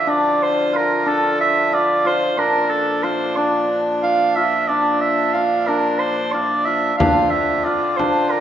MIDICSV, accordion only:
0, 0, Header, 1, 2, 480
1, 0, Start_track
1, 0, Tempo, 660066
1, 53, Time_signature, 7, 3, 24, 8
1, 6111, End_track
2, 0, Start_track
2, 0, Title_t, "Accordion"
2, 0, Program_c, 0, 21
2, 0, Note_on_c, 0, 50, 69
2, 0, Note_on_c, 0, 53, 57
2, 0, Note_on_c, 0, 65, 69
2, 1701, Note_off_c, 0, 65, 0
2, 1703, Note_off_c, 0, 50, 0
2, 1722, Note_on_c, 0, 46, 71
2, 1724, Note_on_c, 0, 62, 72
2, 5059, Note_off_c, 0, 46, 0
2, 5060, Note_off_c, 0, 62, 0
2, 5065, Note_off_c, 0, 53, 0
2, 5086, Note_on_c, 0, 50, 66
2, 5087, Note_on_c, 0, 65, 65
2, 5089, Note_on_c, 0, 60, 59
2, 6111, Note_off_c, 0, 50, 0
2, 6111, Note_off_c, 0, 60, 0
2, 6111, Note_off_c, 0, 65, 0
2, 6111, End_track
0, 0, End_of_file